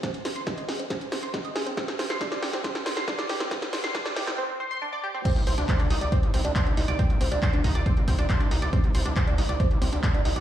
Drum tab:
CC |----------------|----------------|----------------|x---------------|
HH |xxoxxxoxxxoxxxox|xxoxxxo-xxoxxxox|xxoxxxox--------|xxoxxxoxxxoxxxox|
CP |----------------|----------------|----------------|----x-------x---|
SD |o-o-o-o-o-o-o-o-|oooooooooooooooo|oooooooo--------|----------------|
BD |o---o---o---o---|o---o---o---o---|o---o-----------|o---o---o---o---|

CC |----------------|----------------|
HH |xxoxxxoxxxoxxxox|xxoxxxoxxxoxxxox|
CP |----x-------x---|----x-------x---|
SD |----------------|----------------|
BD |o---o-o-o-o-o---|o---o---o---o---|